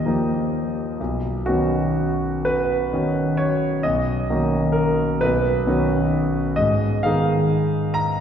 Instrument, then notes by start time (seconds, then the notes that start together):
grand piano
Already playing: D#2 D#5
0.05 F3 A#3 D#4 G4
1.00 B1
1.46 D#3 B3 C#4 F#4
2.45 B4
2.93 D#3 B3 C#4 F#4
3.37 C#5
3.83 B1 D#5
4.30 D#3 A#3 C#4 F#4
4.72 A#4
5.21 B1 B4
5.66 D#3 B3 C#4 F#4
6.56 G#2 D#5
7.03 D#3 B3 D#4 G#4 F5
7.94 A#5